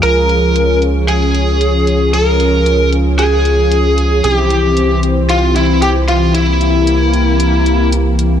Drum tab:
HH |xxxxxxxx|xxxxxxxx|xxxxxxxx|xxxxxxxx|